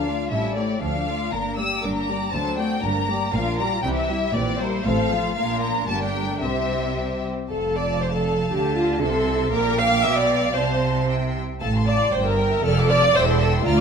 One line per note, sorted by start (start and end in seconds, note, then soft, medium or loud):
0.00 0.23 D2 soft
0.00 0.23 D3 soft
0.00 0.32 F5 medium
0.06 0.32 A3 soft
0.06 0.32 F4 soft
0.06 0.32 D5 soft
0.31 0.74 A1 soft
0.31 0.74 A2 medium
0.31 0.55 G3 soft
0.31 0.55 C#4 soft
0.31 0.56 E4 soft
0.31 0.56 A4 soft
0.31 0.56 E5 medium
0.56 0.83 A3 soft
0.56 0.83 E4 soft
0.56 0.83 G4 soft
0.56 0.83 C#5 soft
0.56 0.82 D5 soft
0.82 1.25 D2 soft
0.82 1.06 F3 soft
0.82 1.06 D4 soft
0.82 1.06 A4 soft
0.82 1.32 F5 medium
1.07 1.33 A3 soft
1.07 1.33 F4 soft
1.07 1.33 D5 soft
1.33 1.75 G1 medium
1.33 1.75 G2 medium
1.33 1.57 A#3 soft
1.33 1.57 D4 soft
1.33 1.56 A#4 soft
1.33 1.58 A#5 medium
1.57 1.84 G3 soft
1.57 1.83 A#3 soft
1.57 1.83 G4 soft
1.57 1.83 D5 soft
1.57 1.83 E6 medium
1.83 2.25 G1 medium
1.83 2.25 G2 soft
1.83 2.08 A#3 soft
1.83 2.09 D4 soft
1.83 2.08 A#4 soft
1.83 1.96 D6 medium
1.96 2.32 A#5 medium
2.08 2.34 G3 soft
2.08 2.34 A#3 soft
2.08 2.33 G4 soft
2.08 2.33 D5 soft
2.33 2.75 D2 medium
2.33 2.57 F#3 soft
2.33 2.57 D4 soft
2.33 2.56 A4 soft
2.33 2.56 C5 soft
2.33 2.58 A5 medium
2.58 2.84 A3 soft
2.58 2.84 C4 soft
2.58 2.84 F#4 soft
2.58 2.84 D5 soft
2.58 2.83 G5 medium
2.82 3.25 G1 medium
2.82 3.25 G2 medium
2.82 3.07 A#3 soft
2.82 3.07 D4 soft
2.82 3.07 A#4 soft
2.82 3.33 A#5 medium
3.09 3.34 G3 soft
3.09 3.34 A#3 soft
3.09 3.34 G4 soft
3.09 3.34 D5 soft
3.33 3.76 A#1 medium
3.33 3.76 A#2 medium
3.33 3.57 F3 soft
3.33 3.57 D4 soft
3.33 3.58 F4 soft
3.33 3.58 A#4 soft
3.33 3.58 F5 medium
3.59 3.84 G3 soft
3.59 3.85 F4 soft
3.59 3.84 G4 soft
3.59 3.85 D5 soft
3.59 3.84 A#5 medium
3.82 4.26 C2 medium
3.82 4.26 C3 medium
3.82 4.08 E3 soft
3.82 4.08 C4 soft
3.82 4.08 E4 soft
3.82 4.08 G4 soft
3.82 3.88 G5 medium
3.96 4.33 E5 medium
4.10 4.35 G3 soft
4.10 4.35 E4 soft
4.10 4.34 G4 soft
4.33 4.77 A#1 medium
4.33 4.77 A#2 medium
4.33 4.58 E3 medium
4.33 4.58 C4 soft
4.33 4.58 G4 soft
4.33 4.59 D5 medium
4.60 4.86 G3 soft
4.60 4.86 A#3 medium
4.60 4.86 E4 soft
4.60 4.86 A#4 soft
4.60 4.85 C5 medium
4.85 5.28 A1 medium
4.85 5.29 A2 medium
4.85 5.10 A3 soft
4.85 5.10 C4 soft
4.85 5.10 A4 soft
4.85 5.10 C5 soft
4.85 5.35 F5 medium
5.11 5.37 F3 soft
5.11 5.37 A3 soft
5.11 5.36 F4 soft
5.11 5.37 A4 soft
5.37 5.86 A#1 medium
5.37 5.86 A#2 medium
5.37 5.86 A#3 medium
5.37 5.86 D4 soft
5.37 5.86 F4 medium
5.37 5.86 A#4 soft
5.37 5.62 F5 medium
5.62 5.89 A#5 medium
5.89 6.43 G1 medium
5.89 6.43 G2 medium
5.89 6.16 A#3 soft
5.89 6.42 D4 soft
5.89 6.42 G4 soft
5.89 6.42 A#4 soft
5.89 6.02 A5 medium
6.02 6.42 G5 medium
6.16 6.43 A3 soft
6.43 7.30 C2 soft
6.43 7.30 C3 soft
6.43 7.30 G3 soft
6.43 7.30 C4 soft
6.43 7.28 G4 soft
6.43 7.30 C5 soft
6.43 7.22 E5 medium
7.50 8.48 F1 medium
7.50 8.48 F2 soft
7.50 7.74 A4 medium
7.50 8.99 F5 soft
7.50 8.99 A5 soft
7.50 9.49 A5 medium
7.76 8.01 D5 medium
8.02 8.14 C5 medium
8.15 8.52 A4 medium
8.52 9.02 D2 medium
8.52 9.03 D3 medium
8.52 8.77 G4 medium
8.78 9.02 F4 medium
9.02 9.53 C2 medium
9.02 9.53 C3 medium
9.02 9.52 A4 medium
9.02 9.49 E5 medium
9.02 9.49 C6 medium
9.52 10.03 A#1 medium
9.52 10.02 A#2 medium
9.52 9.78 A#4 medium
9.52 11.04 F5 medium
9.52 10.51 G5 medium
9.52 10.52 D6 medium
9.78 10.04 F5 loud
10.03 10.55 B1 medium
10.03 10.55 B2 medium
10.03 10.17 E5 medium
10.17 10.55 D5 medium
10.55 11.38 C2 medium
10.55 11.38 C3 medium
10.55 11.08 C5 medium
10.55 11.04 A5 soft
10.55 11.36 C6 medium
11.09 11.38 E5 soft
11.09 11.38 G5 soft
11.60 12.07 A1 medium
11.60 12.07 A2 medium
11.60 11.69 A4 medium
11.60 11.73 F5 soft
11.60 11.72 A5 soft
11.60 11.73 A5 soft
11.74 11.84 F5 soft
11.74 11.84 A5 soft
11.74 11.88 C6 soft
11.85 12.12 D5 medium
11.85 11.98 F5 soft
11.85 11.98 A5 soft
11.85 12.01 A5 soft
11.99 12.13 F5 soft
11.99 12.13 A5 soft
11.99 12.13 C6 soft
12.12 12.58 G1 medium
12.12 12.58 G2 medium
12.12 12.26 C5 medium
12.12 12.25 G5 soft
12.12 12.26 G5 soft
12.25 12.63 A#4 medium
12.25 12.38 E5 soft
12.25 12.39 A#5 soft
12.37 12.51 G5 soft
12.37 12.52 G5 medium
12.51 12.64 E5 medium
12.51 12.64 A#5 soft
12.63 13.09 F1 medium
12.63 13.09 F2 medium
12.63 12.89 A4 medium
12.63 12.76 D5 medium
12.63 12.76 A5 medium
12.63 12.76 F6 medium
12.77 12.90 F5 medium
12.77 12.90 D6 medium
12.89 13.02 D5 medium
12.89 13.15 D5 loud
12.89 13.02 A5 medium
12.89 13.02 F6 medium
13.02 13.15 F5 medium
13.02 13.15 D6 medium
13.14 13.60 E1 medium
13.14 13.60 E2 medium
13.14 13.28 C5 medium
13.14 13.27 E5 medium
13.14 13.26 G5 medium
13.14 13.27 E6 medium
13.27 13.65 A4 medium
13.27 13.39 E5 soft
13.27 13.39 G5 medium
13.27 13.40 C6 medium
13.40 13.51 E5 medium
13.40 13.52 G5 medium
13.40 13.54 E6 medium
13.52 13.65 E5 medium
13.52 13.66 G5 medium
13.52 13.66 C6 medium
13.65 13.81 D2 medium
13.65 13.81 F4 medium
13.65 13.77 D5 medium
13.65 13.77 A#5 medium
13.65 13.77 F6 medium
13.77 13.81 D6 medium